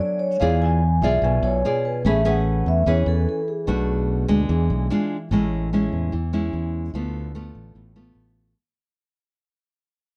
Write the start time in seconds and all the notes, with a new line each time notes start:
Already playing: F#3 D4 A4 C#5 G#5
0.01 D5
0.19 C#5
0.40 E2 E3 F4 G#4 D5 F5
0.62 G#5
1.02 B1 F4 G#4 D5 E5
1.22 B1 B2 G#5
1.43 B1 C#5
1.65 F4 G#4 D5
1.85 B4
2.05 A1 A3 C#4 G#4 B4 E5
2.25 C#4 G#4 B4 F#5
2.66 E2 E5
2.86 E2 E3 C#4 G#4 B4 C#5
3.06 E2 A4
3.29 A4
3.48 G#4
3.67 B1 B2 A3 D4 F#4
4.28 D2 G#3 D4
4.49 E2 E3
4.70 B1
4.90 G#3 D4 F4
5.31 A1 A2 G#3 C#4 E4
5.73 G#3 C#4 E4
5.92 E2
6.12 E2 E3
6.33 G#3 C#4 E4
6.53 E2
6.94 D2 D3 A3 B3 F4
7.35 A3 B3 F4
7.55 A1
7.75 A1 A2
7.96 A3 B3 F4
8.15 A1